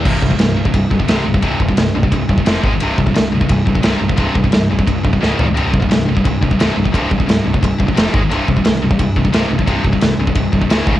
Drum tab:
CC |x---------------|----------------|----------------|----------------|
RD |----b---b---b---|b---b---b---b---|b---b---b---b---|b---b---b-------|
SD |----o-------o---|----o-------o---|----o-------o---|----o-------o---|
FT |----------------|----------------|----------------|--------------o-|
BD |o-oo---oo-oo---o|o-oo---oo-oo--o-|--oo---oo-oo---o|o-oo---oo-oo----|

CC |----------------|----------------|----------------|----------------|
RD |b---b---b---b---|b---b---b---b---|b---b---b---b---|b---b---b---b---|
SD |----o-------o---|----o-------o---|----o-------o---|----o-------o---|
FT |----------------|----------------|----------------|----------------|
BD |--oo---oo-oo---o|o-oo---oo-oo--o-|--oo---oo-oo---o|o-oo---oo-oo--o-|